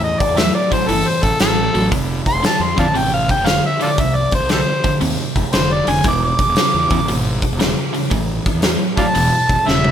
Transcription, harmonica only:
0.04 0.22 D#5 medium
0.20 0.39 D5 medium
0.38 0.54 E5 medium
0.55 0.72 D5 medium
0.73 0.90 C5 medium
0.88 1.09 A4 medium
1.08 1.25 C5 medium
1.24 1.40 A4 medium
1.41 1.91 A4 medium
2.28 2.44 C6 medium
2.46 2.64 A5 medium
2.62 2.79 C6 medium
2.79 2.87 D5 medium
2.79 2.85 F5 medium
2.79 2.99 A5 medium
2.98 3.13 G5 medium
3.14 3.30 F5 medium
3.31 3.48 G5 medium
3.46 3.64 F5 medium
3.66 3.82 E5 medium
3.82 3.89 F4 medium
3.82 3.90 A4 medium
3.82 4.02 D5 medium
4.01 4.17 E5 medium
4.15 4.32 D5 medium
4.35 4.51 C5 medium
4.52 4.58 G4 medium
4.52 4.61 A4 medium
4.52 5.01 C5 medium
5.54 5.74 C5 medium
5.73 5.92 D5 medium
5.90 6.06 G#5 medium
6.08 6.23 D6 medium
6.25 7.24 D6 loud
8.98 9.07 D5 medium
8.98 9.06 F5 medium
8.98 9.69 A5 medium
9.67 9.91 E5 medium

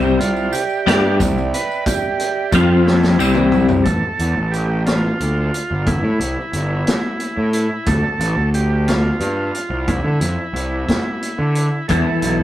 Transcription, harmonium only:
0.00 2.51 D5 medium
0.00 2.51 E5 medium
0.00 3.83 G5 medium
2.53 3.19 F3 medium
2.53 3.19 C5 medium
3.18 3.85 E4 medium
3.18 3.85 D5 medium
11.89 12.43 A4 medium
11.89 12.43 E5 medium
11.89 12.43 B5 medium

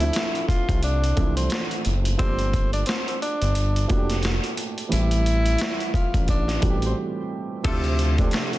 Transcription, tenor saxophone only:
0.00 0.44 E4 loud
0.48 0.79 F4 medium
0.84 1.34 D4 medium
1.36 1.67 C4 medium
2.19 2.70 C4 loud
2.73 2.86 D4 medium
2.87 3.05 C4 medium
3.08 3.21 C4 medium
3.22 3.86 D4 medium
3.89 4.20 D4 medium
4.93 5.91 E4 loud
5.94 6.25 F4 medium
6.30 6.80 D4 medium
6.86 6.97 C4 medium
7.64 8.15 C3 loud
8.18 8.31 D3 medium
8.34 8.51 C3 medium
8.53 8.58 C3 medium

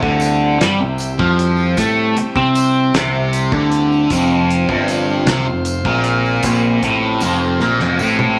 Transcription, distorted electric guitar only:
0.01 0.59 D3 loud
0.60 0.79 G3 loud
0.80 1.11 C3 medium
1.19 1.76 F3 loud
1.77 2.15 A3 loud
2.17 muted distorted electric guitar stroke medium
2.36 2.93 C4 loud
2.95 3.51 C3 loud
3.53 4.10 D3 loud
4.11 4.68 F2 loud
4.69 5.26 G2 loud
5.28 5.46 C3 loud
5.47 5.78 F2 medium
5.85 6.43 A#2 loud
6.45 6.82 A#2 loud
6.83 7.21 A2 medium
7.21 7.59 F2 medium
7.61 7.79 A#2 loud
7.81 7.99 F2 loud
8.00 8.38 A2 loud

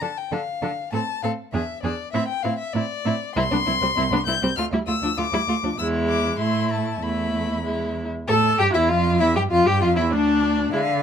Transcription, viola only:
0.02 0.10 D4 medium
0.32 0.40 D4 medium
0.63 0.71 D4 medium
0.94 1.02 C4 medium
1.24 1.32 C4 medium
1.54 1.62 D4 medium
1.84 1.92 D4 medium
2.14 2.22 C4 medium
2.44 2.52 C4 medium
2.75 2.83 C4 medium
3.05 3.13 C4 medium
3.36 3.43 C4 medium
3.53 3.59 B3 medium
3.67 3.73 C4 medium
3.82 3.88 G3 medium
3.97 4.03 C4 medium
4.13 4.19 B3 medium
4.27 4.33 C4 medium
4.43 4.49 G3 medium
4.58 4.64 A3 medium
4.73 4.79 G3 medium
4.88 4.94 A3 medium
5.03 5.09 F3 medium
5.18 5.24 A3 medium
5.33 5.39 G3 medium
5.48 5.54 A3 medium
5.63 5.69 F3 medium
5.78 6.41 G#3 medium
6.40 7.02 A3 medium
7.02 7.64 A3 medium
7.65 8.07 G#3 medium
8.28 8.61 A4 loud
8.59 8.76 G4 loud
8.74 8.91 E4 medium
8.89 9.20 F4 medium
9.20 9.35 E4 medium
9.35 9.42 G4 medium
9.51 9.67 F4 loud
9.66 9.81 G4 medium
9.82 9.96 F4 medium
9.96 10.13 E4 medium
10.12 10.72 D4 medium
10.73 10.81 G#3 medium

